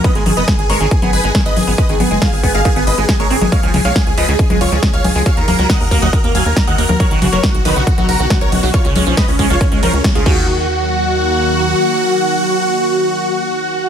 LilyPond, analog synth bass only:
\new Staff \with { instrumentName = "Analog synth bass" } { \clef bass \time 4/4 \key ees \minor \tempo 4 = 138 r16 aes,,16 aes,,16 ges,,16 r16 aes,,16 aes,,16 aes,,16 r16 aes,,16 aes,,16 aes,,16 r16 aes,,16 aes,,16 aes,,16 | r16 aes,,16 aes,,16 ges,,16 r16 aes,,16 aes,,16 aes,,16 r16 aes,,16 aes,,16 aes,,16 r16 aes,,16 aes,,16 aes,,16 | r16 des,16 des,16 ces,16 r16 des,16 des,16 des,16 r16 des,16 des,16 des,16 r16 des,16 des,16 des,16 | r16 ees,16 ees,16 des,16 r16 ees,16 ees,16 ees,16 r16 ees,16 ees,16 ees,16 r16 ees,16 ees,16 ees,16 |
r16 b,,16 b,,16 fis,,16 r16 b,,16 b,,16 b,,16 r16 b,,16 b,,16 b,,16 r16 b,,16 b,,16 b,,16 | r16 des,16 des,16 ces,16 r16 des,16 des,16 des,16 r16 des,16 des,16 des,16 r16 des,16 ees,8~ | ees,2. r4 | r1 | }